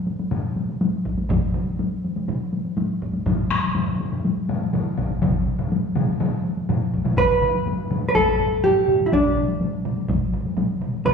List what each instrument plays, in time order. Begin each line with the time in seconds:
0.07 taiko high
0.20 taiko high
0.31 taiko low-mid, taiko high
0.56 taiko high
0.69 taiko high
0.81 taiko high
1.05 taiko
1.18 taiko high
1.30 taiko, taiko mid, taiko high
1.54 taiko mid, taiko high
1.67 taiko high
1.79 taiko high
2.04 taiko high
2.16 taiko high
2.28 taiko mid, taiko high
2.53 taiko high
2.65 taiko high
2.77 taiko high
3.02 taiko
3.14 taiko high
3.26 taiko, taiko low-mid, taiko high
3.51 taiko rim, taiko high
3.64 taiko high
3.75 taiko low-mid, taiko high
3.88 taiko low-mid
4.00 taiko low-mid, taiko high
4.12 taiko low-mid, taiko high
4.25 taiko high
4.49 taiko low-mid, taiko high
4.61 taiko high
4.73 taiko low-mid, taiko high
4.98 taiko, taiko low-mid
5.10 taiko high
5.22 taiko, taiko low-mid, taiko mid, taiko high
5.47 taiko high
5.59 taiko low-mid, taiko mid, taiko high
5.72 taiko high
5.95 taiko low-mid, taiko mid, taiko high
6.08 taiko high
6.20 taiko low-mid, taiko mid, taiko high
6.45 taiko high
6.57 taiko high
6.69 taiko low-mid, taiko mid, taiko high
6.94 taiko, taiko high
7.05 taiko low-mid, taiko mid, taiko high
7.18 hollow-body jazz guitar B4, taiko, taiko low-mid, taiko high
7.30 taiko low-mid
7.42 taiko low-mid
7.55 taiko high
7.66 taiko low-mid, taiko high
7.78 taiko low-mid
7.91 taiko low-mid, taiko high
8.03 taiko high
8.09 hollow-body jazz guitar B4
8.15 hollow-body jazz guitar A4, taiko, taiko low-mid, taiko high
8.40 taiko low-mid
8.52 taiko high
8.63 hollow-body jazz guitar G4, taiko low-mid, taiko high
8.88 taiko low-mid
9.00 taiko high
9.06 hollow-body jazz guitar E4
9.12 hollow-body jazz guitar D4, taiko, taiko mid, taiko high
9.25 taiko mid
9.36 taiko mid
9.49 taiko high
9.61 taiko mid, taiko high
9.73 taiko mid
9.85 taiko mid, taiko high
9.97 taiko high
10.09 taiko, taiko mid, taiko high
10.33 taiko mid
10.45 taiko high
10.57 taiko mid, taiko high
10.81 taiko mid
10.94 taiko high
11.05 hollow-body jazz guitar B4, taiko, taiko low-mid, taiko high